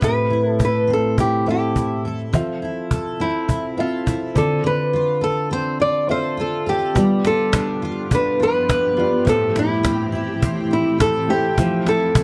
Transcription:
0.01 A2 C4 G4 A4 B4 E5, cajon bass
0.30 E4
0.49 A4
0.59 A4, cajon bass
0.65 B4
0.87 C4
0.93 A4
1.18 E4 G4, cajon bass
1.46 C4 G4 A4 E5
1.50 G4
1.75 E4, cajon bass
2.05 A4
2.33 F3 C4 F4 A4 E5, cajon bass
2.62 E4
2.91 A4, cajon bass
3.20 C4 E4
3.48 E4, cajon bass
3.77 C4 F4 A4 E5
4.06 E4, cajon bass
4.35 D3 C4 F4 A4 D5, cajon bass
4.64 D3 B4
4.93 F4
5.21 A4
5.51 C4 C5
5.80 F4 D5
6.07 C4 F4 A4 C5 E5
6.37 F4 A4
6.66 G4 A4
6.94 G2 F3 G3 B3 F4 G4 D5, cajon bass
7.24 F4 A4, cajon slap
7.52 D4, cajon bass, cajon slap
7.82 F4
8.11 D4 B4, cajon bass
8.40 F4 B4
8.69 B4, cajon bass, cajon slap
8.97 B3 F4 G4 D5
9.25 A2 E3 A3 C4 E4 G4 C5, cajon bass
9.29 A4
9.55 E4, cajon slap
9.83 C4, cajon bass, cajon slap
10.12 E4
10.42 C4, cajon bass
10.71 E4
11.00 A4, cajon bass, cajon slap
11.28 A3 E4 G4 C5
11.56 F2 F3 A3 E4 F4 C5 E5, cajon bass
11.87 E4 A4, cajon slap
12.15 C4, cajon bass, cajon slap

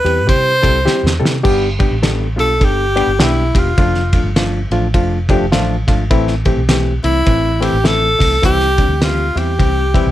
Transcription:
Already playing: B4
0.05 E2 G3 C4 E4 G4, ride
0.27 C3 G3 C4 E4 G4 C5, kick, ride
0.62 C2 G3 C4 E4 A4, kick, ride
0.85 G3 C4 E4 G4, muted fingered electric bass stroke, snare
1.03 E2, snare
1.20 C3 G3 C4 E4 A4
1.25 snare
1.44 G1 G3 B3 D4 G4, kick, crash
1.79 G3 B3 D4 G4, kick, ride
1.91 A1
2.02 G3 B3 D4 A4, snare, ride
2.36 B1 G3 B3 D4 F4 A4, ride
2.60 G1 G3 B3 D4 A4, kick, ride
2.64 G4
2.96 G3 B3 D4 G4, ride
3.07 G1
3.19 B1 G3 B3 D4 E4 G4, snare, ride
3.54 E1 G3 B3 D4 F4 G4, kick, ride
3.78 F1 F3 A3 D4 F4, kick, ride
3.95 snare
4.13 F3 A3 D4 F4, kick, ride
4.24 G1
4.36 F3 A3 D4 F4, snare, ride
4.71 A1 F3 A3 D4 F4, ride
4.94 F1 F3 A3 D4 F4, kick, ride
5.29 F3 A3 D4 G4, kick, ride
5.41 F1
5.52 A1 F3 A3 D4 F4, snare, ride
5.87 G#1 F3 A3 D4 F4, kick, snare, ride
6.10 A1 E3 A3 C4 E4, kick, ride
6.28 snare
6.45 E3 A3 C4 G4, kick, ride
6.57 B1
6.69 E3 A3 C4 G4, snare, ride
7.04 C2 E3 A3 C4 E4, ride
7.26 A1 E3 A3 C4 E4, kick, ride
7.61 E3 A3 C4 E4 G4, ride
7.73 A1
7.84 E3 A3 C4 E4 A4, snare, ride
8.19 C2 E3 A3 C4 E4, kick, snare, open hi-hat, ride
8.43 C2 E3 G3 C4 E4 G4, kick, hi-hat pedal, ride
8.60 snare
8.78 E3 G3 C4 D4, kick, ride
8.88 D2
9.01 E3 G3 C4 F4 G4, snare, ride
9.35 E2 E3 G3 C4 E4 G4, ride
9.59 C2 E3 G3 C4 G4, kick, ride
9.94 E3 G3 C4 E4, kick, ride
10.06 C2

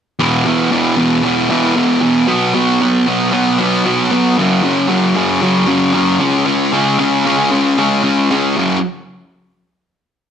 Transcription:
0.19 E2 B2 E3
0.45 E2 B2 E3
0.71 E2 B2 E3
0.97 E2 B2 E3
1.23 E2 B2 E3
1.50 E2 B2 E3
1.76 E2 B2 E3
2.02 E2 B2 E3
2.28 B2 F#3 B3
2.54 B2 F#3 B3
2.81 B2 F#3 B3
3.07 B2 F#3 B3
3.32 B2 F#3 B3
3.59 B2 F#3 B3
3.86 B2 F#3 B3
4.12 B2 F#3 B3
4.38 F#2 C#3 F#3
4.64 F#2 C#3 F#3
4.88 F#2 C#3 F#3
5.15 F#2 C#3 F#3
5.42 F#2 C#3 F#3
5.67 F#2 C#3 F#3
5.94 F#2 C#3 F#3
6.20 C#3 G#3 C#4
6.45 C#3 G#3 C#4
6.73 C#3 G#3 C#4
6.99 C#3 G#3 C#4
7.26 C#3 G#3 C#4
7.51 C#3 G#3 C#4
7.79 C#3 G#3 C#4
8.03 C#3 G#3 C#4
8.31 C#3 G#3 C#4
8.57 F#2 C#3 F#3

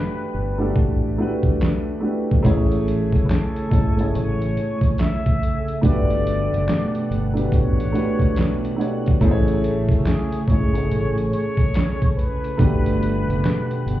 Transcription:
Already playing: A3 D4 F#4 G4 B4
0.34 G1
0.58 A3 D4 F#4 G4 A4
0.76 A1, kick
1.18 A3 D4 F#4 G4 B4
1.43 kick
1.62 snare, clap
2.00 A3 D4 F#4 G4 B4
2.31 kick
2.43 A1 C#3 A3 C#4 E4 G#4 C#5 G#5, kick, closed hi-hat
2.72 closed hi-hat
2.88 closed hi-hat
3.12 F#1, kick, closed hi-hat
3.25 B4
3.30 A4, snare, clap, closed hi-hat
3.56 closed hi-hat
3.69 G#1 A3 C#4 E4 G#4 C#5, kick
3.73 closed hi-hat
3.97 A3 C#4 E4 G#4 C#5, closed hi-hat
4.15 A1 C#5, closed hi-hat
4.42 closed hi-hat
4.57 closed hi-hat
4.81 kick, closed hi-hat
4.98 E5, snare, clap, closed hi-hat
5.26 kick, closed hi-hat
5.43 closed hi-hat
5.68 closed hi-hat
5.81 G1 B2 A3 D4 F#4 G4 B4 D5 F#5, kick, closed hi-hat
6.10 closed hi-hat
6.27 closed hi-hat
6.52 F#1, closed hi-hat
6.69 snare, clap, closed hi-hat
6.95 closed hi-hat
7.11 G1, closed hi-hat
7.33 A3 D4 F#4 G4 B4, closed hi-hat
7.52 A1 C#5, kick, closed hi-hat
7.80 closed hi-hat
7.92 A3 D4 F#4 G4 B4, closed hi-hat
8.19 kick, closed hi-hat
8.36 snare, clap, closed hi-hat
8.65 closed hi-hat
8.76 A3 D4 F#4 G4 C#5
8.81 closed hi-hat
9.06 kick, closed hi-hat
9.21 A1 C#3 A3 C#4 E4 G#4, kick, closed hi-hat
9.25 C5
9.31 C#5
9.48 closed hi-hat
9.64 closed hi-hat
9.89 F#1, kick, closed hi-hat
10.06 G#4, snare, clap, closed hi-hat
10.32 closed hi-hat
10.48 G#1 A3 C#4 E4 G#4 C#5, kick, closed hi-hat
10.52 C#5
10.74 A3 C#4 E4 G#4 C#5, closed hi-hat
10.91 A1, closed hi-hat
11.18 closed hi-hat
11.32 C#5, closed hi-hat
11.57 kick, closed hi-hat
11.74 snare, clap, closed hi-hat
12.02 kick, closed hi-hat
12.17 B4, closed hi-hat
12.44 closed hi-hat
12.57 G1 B2 A3 D4 F#4 G4 B4 F#5, kick, closed hi-hat
12.86 closed hi-hat
13.03 closed hi-hat
13.28 F#1, closed hi-hat
13.45 snare, clap, closed hi-hat
13.71 closed hi-hat
13.86 G1, closed hi-hat

